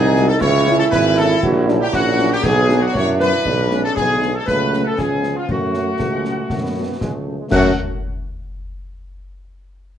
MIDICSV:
0, 0, Header, 1, 9, 480
1, 0, Start_track
1, 0, Key_signature, 3, "minor"
1, 0, Tempo, 507185
1, 397, Time_signature, 2, 2, 24, 8
1, 9445, End_track
2, 0, Start_track
2, 0, Title_t, "Piccolo"
2, 0, Program_c, 0, 72
2, 0, Note_on_c, 0, 80, 106
2, 268, Note_on_c, 0, 81, 112
2, 282, Note_off_c, 0, 80, 0
2, 387, Note_on_c, 0, 85, 127
2, 401, Note_off_c, 0, 81, 0
2, 742, Note_off_c, 0, 85, 0
2, 748, Note_on_c, 0, 81, 115
2, 804, Note_off_c, 0, 81, 0
2, 863, Note_on_c, 0, 83, 110
2, 920, Note_off_c, 0, 83, 0
2, 1123, Note_on_c, 0, 81, 101
2, 1180, Note_off_c, 0, 81, 0
2, 1726, Note_on_c, 0, 79, 113
2, 1778, Note_off_c, 0, 79, 0
2, 1835, Note_on_c, 0, 78, 127
2, 2209, Note_on_c, 0, 79, 102
2, 2223, Note_off_c, 0, 78, 0
2, 2306, Note_off_c, 0, 79, 0
2, 2311, Note_on_c, 0, 80, 124
2, 2673, Note_on_c, 0, 78, 102
2, 2687, Note_off_c, 0, 80, 0
2, 2785, Note_off_c, 0, 78, 0
2, 2791, Note_on_c, 0, 85, 127
2, 2848, Note_off_c, 0, 85, 0
2, 3039, Note_on_c, 0, 83, 111
2, 3599, Note_off_c, 0, 83, 0
2, 3635, Note_on_c, 0, 81, 83
2, 3746, Note_off_c, 0, 81, 0
2, 3761, Note_on_c, 0, 80, 113
2, 4118, Note_on_c, 0, 81, 83
2, 4132, Note_off_c, 0, 80, 0
2, 4221, Note_off_c, 0, 81, 0
2, 4227, Note_on_c, 0, 83, 106
2, 4565, Note_off_c, 0, 83, 0
2, 4604, Note_on_c, 0, 81, 81
2, 4698, Note_off_c, 0, 81, 0
2, 4704, Note_on_c, 0, 80, 85
2, 5076, Note_on_c, 0, 77, 71
2, 5090, Note_off_c, 0, 80, 0
2, 5213, Note_on_c, 0, 78, 82
2, 5227, Note_off_c, 0, 77, 0
2, 6883, Note_off_c, 0, 78, 0
2, 7118, Note_on_c, 0, 90, 112
2, 7384, Note_off_c, 0, 90, 0
2, 9445, End_track
3, 0, Start_track
3, 0, Title_t, "Woodwind section"
3, 0, Program_c, 1, 71
3, 0, Note_on_c, 1, 68, 105
3, 266, Note_on_c, 1, 69, 122
3, 277, Note_off_c, 1, 68, 0
3, 382, Note_on_c, 1, 73, 127
3, 392, Note_off_c, 1, 69, 0
3, 747, Note_on_c, 1, 69, 107
3, 749, Note_off_c, 1, 73, 0
3, 803, Note_off_c, 1, 69, 0
3, 866, Note_on_c, 1, 71, 104
3, 976, Note_off_c, 1, 71, 0
3, 1103, Note_on_c, 1, 69, 109
3, 1332, Note_off_c, 1, 69, 0
3, 1703, Note_on_c, 1, 67, 101
3, 1820, Note_off_c, 1, 67, 0
3, 1825, Note_on_c, 1, 66, 109
3, 2164, Note_off_c, 1, 66, 0
3, 2180, Note_on_c, 1, 67, 107
3, 2291, Note_on_c, 1, 68, 122
3, 2307, Note_off_c, 1, 67, 0
3, 2636, Note_off_c, 1, 68, 0
3, 2650, Note_on_c, 1, 66, 99
3, 2710, Note_off_c, 1, 66, 0
3, 2761, Note_on_c, 1, 73, 121
3, 2876, Note_off_c, 1, 73, 0
3, 3021, Note_on_c, 1, 71, 116
3, 3589, Note_off_c, 1, 71, 0
3, 3623, Note_on_c, 1, 69, 87
3, 3729, Note_on_c, 1, 68, 105
3, 3740, Note_off_c, 1, 69, 0
3, 4075, Note_off_c, 1, 68, 0
3, 4097, Note_on_c, 1, 69, 88
3, 4155, Note_off_c, 1, 69, 0
3, 4223, Note_on_c, 1, 71, 103
3, 4563, Note_off_c, 1, 71, 0
3, 4604, Note_on_c, 1, 69, 76
3, 4711, Note_off_c, 1, 69, 0
3, 4713, Note_on_c, 1, 68, 88
3, 5048, Note_off_c, 1, 68, 0
3, 5068, Note_on_c, 1, 65, 75
3, 5123, Note_off_c, 1, 65, 0
3, 5193, Note_on_c, 1, 66, 84
3, 6835, Note_off_c, 1, 66, 0
3, 7122, Note_on_c, 1, 78, 98
3, 7320, Note_off_c, 1, 78, 0
3, 9445, End_track
4, 0, Start_track
4, 0, Title_t, "Trumpet section"
4, 0, Program_c, 2, 61
4, 0, Note_on_c, 2, 68, 127
4, 259, Note_on_c, 2, 69, 127
4, 270, Note_off_c, 2, 68, 0
4, 317, Note_off_c, 2, 69, 0
4, 379, Note_on_c, 2, 73, 127
4, 722, Note_off_c, 2, 73, 0
4, 741, Note_on_c, 2, 69, 127
4, 798, Note_off_c, 2, 69, 0
4, 858, Note_on_c, 2, 71, 125
4, 1090, Note_off_c, 2, 71, 0
4, 1109, Note_on_c, 2, 69, 127
4, 1353, Note_off_c, 2, 69, 0
4, 1704, Note_on_c, 2, 67, 127
4, 1821, Note_off_c, 2, 67, 0
4, 1832, Note_on_c, 2, 66, 127
4, 2192, Note_on_c, 2, 67, 124
4, 2193, Note_off_c, 2, 66, 0
4, 2305, Note_off_c, 2, 67, 0
4, 2312, Note_on_c, 2, 68, 125
4, 2673, Note_off_c, 2, 68, 0
4, 2704, Note_on_c, 2, 66, 120
4, 2802, Note_off_c, 2, 66, 0
4, 2807, Note_on_c, 2, 73, 120
4, 2912, Note_off_c, 2, 73, 0
4, 3035, Note_on_c, 2, 71, 122
4, 3596, Note_off_c, 2, 71, 0
4, 3634, Note_on_c, 2, 69, 117
4, 3688, Note_off_c, 2, 69, 0
4, 3746, Note_on_c, 2, 68, 113
4, 4084, Note_off_c, 2, 68, 0
4, 4117, Note_on_c, 2, 69, 112
4, 4235, Note_off_c, 2, 69, 0
4, 4237, Note_on_c, 2, 71, 108
4, 4570, Note_off_c, 2, 71, 0
4, 4589, Note_on_c, 2, 69, 97
4, 4711, Note_off_c, 2, 69, 0
4, 4719, Note_on_c, 2, 68, 100
4, 5076, Note_off_c, 2, 68, 0
4, 5083, Note_on_c, 2, 65, 88
4, 5190, Note_off_c, 2, 65, 0
4, 5204, Note_on_c, 2, 66, 91
4, 6841, Note_off_c, 2, 66, 0
4, 7121, Note_on_c, 2, 66, 107
4, 7320, Note_off_c, 2, 66, 0
4, 9445, End_track
5, 0, Start_track
5, 0, Title_t, "Euphonium"
5, 0, Program_c, 3, 58
5, 0, Note_on_c, 3, 63, 124
5, 367, Note_off_c, 3, 63, 0
5, 399, Note_on_c, 3, 64, 127
5, 1319, Note_off_c, 3, 64, 0
5, 1355, Note_on_c, 3, 66, 127
5, 1591, Note_on_c, 3, 62, 111
5, 1605, Note_off_c, 3, 66, 0
5, 1838, Note_on_c, 3, 61, 98
5, 1852, Note_off_c, 3, 62, 0
5, 2311, Note_off_c, 3, 61, 0
5, 2316, Note_on_c, 3, 59, 107
5, 2801, Note_on_c, 3, 64, 124
5, 2815, Note_off_c, 3, 59, 0
5, 3284, Note_on_c, 3, 62, 101
5, 3298, Note_off_c, 3, 64, 0
5, 3519, Note_off_c, 3, 62, 0
5, 3531, Note_on_c, 3, 61, 95
5, 3746, Note_off_c, 3, 61, 0
5, 3768, Note_on_c, 3, 59, 94
5, 4051, Note_off_c, 3, 59, 0
5, 4236, Note_on_c, 3, 57, 84
5, 4681, Note_off_c, 3, 57, 0
5, 4706, Note_on_c, 3, 61, 88
5, 5190, Note_on_c, 3, 57, 75
5, 5205, Note_off_c, 3, 61, 0
5, 6872, Note_off_c, 3, 57, 0
5, 9445, End_track
6, 0, Start_track
6, 0, Title_t, "French horn section"
6, 0, Program_c, 4, 60
6, 166, Note_on_c, 4, 63, 93
6, 167, Note_on_c, 4, 56, 92
6, 167, Note_on_c, 4, 66, 99
6, 250, Note_off_c, 4, 63, 0
6, 251, Note_off_c, 4, 56, 0
6, 251, Note_off_c, 4, 66, 0
6, 634, Note_on_c, 4, 64, 103
6, 638, Note_on_c, 4, 56, 105
6, 641, Note_on_c, 4, 61, 106
6, 721, Note_off_c, 4, 64, 0
6, 724, Note_off_c, 4, 56, 0
6, 727, Note_off_c, 4, 61, 0
6, 1128, Note_on_c, 4, 56, 86
6, 1128, Note_on_c, 4, 61, 89
6, 1129, Note_on_c, 4, 64, 92
6, 1211, Note_off_c, 4, 56, 0
6, 1211, Note_off_c, 4, 61, 0
6, 1213, Note_off_c, 4, 64, 0
6, 1598, Note_on_c, 4, 61, 102
6, 1601, Note_on_c, 4, 64, 98
6, 1603, Note_on_c, 4, 54, 101
6, 1683, Note_off_c, 4, 61, 0
6, 1686, Note_off_c, 4, 64, 0
6, 1688, Note_off_c, 4, 54, 0
6, 2071, Note_on_c, 4, 64, 91
6, 2075, Note_on_c, 4, 54, 88
6, 2076, Note_on_c, 4, 61, 87
6, 2158, Note_off_c, 4, 64, 0
6, 2162, Note_off_c, 4, 54, 0
6, 2162, Note_off_c, 4, 61, 0
6, 2559, Note_on_c, 4, 59, 104
6, 2562, Note_on_c, 4, 54, 96
6, 2562, Note_on_c, 4, 62, 104
6, 2645, Note_off_c, 4, 59, 0
6, 2646, Note_off_c, 4, 54, 0
6, 2647, Note_off_c, 4, 62, 0
6, 3039, Note_on_c, 4, 59, 90
6, 3040, Note_on_c, 4, 62, 82
6, 3043, Note_on_c, 4, 54, 85
6, 3124, Note_off_c, 4, 59, 0
6, 3125, Note_off_c, 4, 62, 0
6, 3127, Note_off_c, 4, 54, 0
6, 3515, Note_on_c, 4, 62, 88
6, 3517, Note_on_c, 4, 56, 89
6, 3521, Note_on_c, 4, 59, 83
6, 3601, Note_off_c, 4, 62, 0
6, 3602, Note_off_c, 4, 56, 0
6, 3605, Note_off_c, 4, 59, 0
6, 3992, Note_on_c, 4, 62, 78
6, 3995, Note_on_c, 4, 56, 73
6, 4001, Note_on_c, 4, 59, 79
6, 4079, Note_off_c, 4, 62, 0
6, 4081, Note_off_c, 4, 56, 0
6, 4085, Note_off_c, 4, 59, 0
6, 4479, Note_on_c, 4, 57, 73
6, 4479, Note_on_c, 4, 61, 72
6, 4480, Note_on_c, 4, 54, 73
6, 4564, Note_off_c, 4, 57, 0
6, 4564, Note_off_c, 4, 61, 0
6, 4565, Note_off_c, 4, 54, 0
6, 4961, Note_on_c, 4, 59, 68
6, 4962, Note_on_c, 4, 53, 61
6, 4963, Note_on_c, 4, 61, 60
6, 5046, Note_off_c, 4, 53, 0
6, 5046, Note_off_c, 4, 59, 0
6, 5047, Note_off_c, 4, 61, 0
6, 5434, Note_on_c, 4, 57, 64
6, 5435, Note_on_c, 4, 61, 68
6, 5436, Note_on_c, 4, 54, 65
6, 5521, Note_off_c, 4, 57, 0
6, 5521, Note_off_c, 4, 61, 0
6, 5522, Note_off_c, 4, 54, 0
6, 5902, Note_on_c, 4, 57, 59
6, 5904, Note_on_c, 4, 54, 59
6, 5906, Note_on_c, 4, 61, 56
6, 5991, Note_off_c, 4, 57, 0
6, 5992, Note_off_c, 4, 54, 0
6, 5994, Note_off_c, 4, 61, 0
6, 6388, Note_on_c, 4, 54, 63
6, 6388, Note_on_c, 4, 61, 61
6, 6389, Note_on_c, 4, 57, 59
6, 6475, Note_off_c, 4, 54, 0
6, 6475, Note_off_c, 4, 61, 0
6, 6476, Note_off_c, 4, 57, 0
6, 6870, Note_on_c, 4, 54, 54
6, 6871, Note_on_c, 4, 57, 52
6, 6874, Note_on_c, 4, 61, 54
6, 6957, Note_off_c, 4, 54, 0
6, 6958, Note_off_c, 4, 57, 0
6, 6960, Note_off_c, 4, 61, 0
6, 7103, Note_on_c, 4, 54, 95
6, 7104, Note_on_c, 4, 57, 100
6, 7104, Note_on_c, 4, 61, 99
6, 7308, Note_off_c, 4, 54, 0
6, 7308, Note_off_c, 4, 57, 0
6, 7308, Note_off_c, 4, 61, 0
6, 9445, End_track
7, 0, Start_track
7, 0, Title_t, "Trombone section"
7, 0, Program_c, 5, 61
7, 0, Note_on_c, 5, 54, 105
7, 0, Note_on_c, 5, 63, 117
7, 216, Note_off_c, 5, 54, 0
7, 216, Note_off_c, 5, 63, 0
7, 377, Note_on_c, 5, 64, 117
7, 380, Note_on_c, 5, 52, 104
7, 1348, Note_off_c, 5, 52, 0
7, 1352, Note_on_c, 5, 54, 105
7, 2267, Note_off_c, 5, 64, 0
7, 2315, Note_on_c, 5, 62, 108
7, 3234, Note_off_c, 5, 54, 0
7, 3269, Note_on_c, 5, 56, 94
7, 4196, Note_off_c, 5, 62, 0
7, 4227, Note_on_c, 5, 54, 81
7, 4231, Note_off_c, 5, 56, 0
7, 4232, Note_on_c, 5, 57, 79
7, 4677, Note_off_c, 5, 54, 0
7, 4679, Note_off_c, 5, 57, 0
7, 4713, Note_on_c, 5, 53, 70
7, 4717, Note_on_c, 5, 59, 70
7, 5192, Note_on_c, 5, 54, 67
7, 5193, Note_off_c, 5, 53, 0
7, 5195, Note_off_c, 5, 59, 0
7, 5196, Note_on_c, 5, 57, 71
7, 5596, Note_off_c, 5, 57, 0
7, 5625, Note_off_c, 5, 54, 0
7, 5655, Note_on_c, 5, 57, 75
7, 5714, Note_off_c, 5, 57, 0
7, 5769, Note_on_c, 5, 56, 71
7, 6115, Note_off_c, 5, 56, 0
7, 6141, Note_on_c, 5, 57, 82
7, 6198, Note_off_c, 5, 57, 0
7, 6251, Note_on_c, 5, 59, 76
7, 6596, Note_off_c, 5, 59, 0
7, 6631, Note_on_c, 5, 56, 79
7, 6744, Note_off_c, 5, 56, 0
7, 6764, Note_on_c, 5, 57, 68
7, 6999, Note_off_c, 5, 57, 0
7, 6999, Note_on_c, 5, 56, 57
7, 7052, Note_off_c, 5, 56, 0
7, 7112, Note_on_c, 5, 54, 97
7, 7116, Note_on_c, 5, 57, 102
7, 7314, Note_off_c, 5, 54, 0
7, 7316, Note_off_c, 5, 57, 0
7, 9445, End_track
8, 0, Start_track
8, 0, Title_t, "Tuba"
8, 0, Program_c, 6, 58
8, 0, Note_on_c, 6, 36, 116
8, 312, Note_off_c, 6, 36, 0
8, 387, Note_on_c, 6, 37, 126
8, 791, Note_off_c, 6, 37, 0
8, 870, Note_on_c, 6, 32, 116
8, 1273, Note_off_c, 6, 32, 0
8, 1350, Note_on_c, 6, 34, 117
8, 1752, Note_off_c, 6, 34, 0
8, 1831, Note_on_c, 6, 34, 104
8, 2233, Note_off_c, 6, 34, 0
8, 2307, Note_on_c, 6, 35, 117
8, 2710, Note_off_c, 6, 35, 0
8, 2791, Note_on_c, 6, 42, 100
8, 3155, Note_off_c, 6, 42, 0
8, 3276, Note_on_c, 6, 35, 107
8, 3675, Note_off_c, 6, 35, 0
8, 3756, Note_on_c, 6, 35, 81
8, 4155, Note_off_c, 6, 35, 0
8, 4235, Note_on_c, 6, 37, 93
8, 4634, Note_off_c, 6, 37, 0
8, 4711, Note_on_c, 6, 37, 75
8, 5112, Note_off_c, 6, 37, 0
8, 5191, Note_on_c, 6, 42, 82
8, 5592, Note_off_c, 6, 42, 0
8, 5665, Note_on_c, 6, 37, 67
8, 6069, Note_off_c, 6, 37, 0
8, 6147, Note_on_c, 6, 42, 74
8, 6550, Note_off_c, 6, 42, 0
8, 6627, Note_on_c, 6, 37, 65
8, 7030, Note_off_c, 6, 37, 0
8, 7113, Note_on_c, 6, 42, 112
8, 7314, Note_off_c, 6, 42, 0
8, 9445, End_track
9, 0, Start_track
9, 0, Title_t, "Drums"
9, 154, Note_on_c, 9, 38, 71
9, 248, Note_off_c, 9, 38, 0
9, 388, Note_on_c, 9, 35, 91
9, 388, Note_on_c, 9, 38, 90
9, 483, Note_off_c, 9, 35, 0
9, 483, Note_off_c, 9, 38, 0
9, 635, Note_on_c, 9, 38, 67
9, 729, Note_off_c, 9, 38, 0
9, 874, Note_on_c, 9, 35, 87
9, 874, Note_on_c, 9, 38, 96
9, 968, Note_off_c, 9, 35, 0
9, 968, Note_off_c, 9, 38, 0
9, 1109, Note_on_c, 9, 38, 68
9, 1204, Note_off_c, 9, 38, 0
9, 1353, Note_on_c, 9, 35, 100
9, 1353, Note_on_c, 9, 49, 35
9, 1447, Note_off_c, 9, 35, 0
9, 1447, Note_off_c, 9, 49, 0
9, 1595, Note_on_c, 9, 38, 64
9, 1689, Note_off_c, 9, 38, 0
9, 1828, Note_on_c, 9, 35, 82
9, 1828, Note_on_c, 9, 38, 90
9, 1923, Note_off_c, 9, 35, 0
9, 1923, Note_off_c, 9, 38, 0
9, 2069, Note_on_c, 9, 38, 68
9, 2164, Note_off_c, 9, 38, 0
9, 2304, Note_on_c, 9, 35, 92
9, 2304, Note_on_c, 9, 38, 86
9, 2398, Note_off_c, 9, 35, 0
9, 2398, Note_off_c, 9, 38, 0
9, 2549, Note_on_c, 9, 38, 69
9, 2644, Note_off_c, 9, 38, 0
9, 2789, Note_on_c, 9, 35, 91
9, 2789, Note_on_c, 9, 38, 88
9, 2884, Note_off_c, 9, 35, 0
9, 2884, Note_off_c, 9, 38, 0
9, 3031, Note_on_c, 9, 38, 66
9, 3125, Note_off_c, 9, 38, 0
9, 3270, Note_on_c, 9, 35, 86
9, 3270, Note_on_c, 9, 49, 37
9, 3364, Note_off_c, 9, 35, 0
9, 3364, Note_off_c, 9, 49, 0
9, 3510, Note_on_c, 9, 38, 62
9, 3604, Note_off_c, 9, 38, 0
9, 3753, Note_on_c, 9, 35, 86
9, 3753, Note_on_c, 9, 38, 77
9, 3847, Note_off_c, 9, 35, 0
9, 3847, Note_off_c, 9, 38, 0
9, 3995, Note_on_c, 9, 38, 59
9, 4090, Note_off_c, 9, 38, 0
9, 4235, Note_on_c, 9, 35, 83
9, 4235, Note_on_c, 9, 38, 77
9, 4330, Note_off_c, 9, 35, 0
9, 4330, Note_off_c, 9, 38, 0
9, 4478, Note_on_c, 9, 38, 62
9, 4573, Note_off_c, 9, 38, 0
9, 4716, Note_on_c, 9, 35, 79
9, 4716, Note_on_c, 9, 38, 73
9, 4810, Note_off_c, 9, 35, 0
9, 4810, Note_off_c, 9, 38, 0
9, 4953, Note_on_c, 9, 38, 58
9, 5047, Note_off_c, 9, 38, 0
9, 5192, Note_on_c, 9, 35, 86
9, 5192, Note_on_c, 9, 49, 31
9, 5287, Note_off_c, 9, 35, 0
9, 5287, Note_off_c, 9, 49, 0
9, 5433, Note_on_c, 9, 38, 60
9, 5528, Note_off_c, 9, 38, 0
9, 5672, Note_on_c, 9, 35, 85
9, 5672, Note_on_c, 9, 38, 77
9, 5766, Note_off_c, 9, 35, 0
9, 5766, Note_off_c, 9, 38, 0
9, 5914, Note_on_c, 9, 38, 59
9, 6009, Note_off_c, 9, 38, 0
9, 6152, Note_on_c, 9, 35, 85
9, 6152, Note_on_c, 9, 38, 68
9, 6246, Note_off_c, 9, 35, 0
9, 6246, Note_off_c, 9, 38, 0
9, 6637, Note_on_c, 9, 35, 79
9, 6637, Note_on_c, 9, 38, 77
9, 6732, Note_off_c, 9, 35, 0
9, 6732, Note_off_c, 9, 38, 0
9, 7114, Note_on_c, 9, 35, 111
9, 7114, Note_on_c, 9, 38, 102
9, 7114, Note_on_c, 9, 49, 89
9, 7209, Note_off_c, 9, 35, 0
9, 7209, Note_off_c, 9, 38, 0
9, 7209, Note_off_c, 9, 49, 0
9, 9445, End_track
0, 0, End_of_file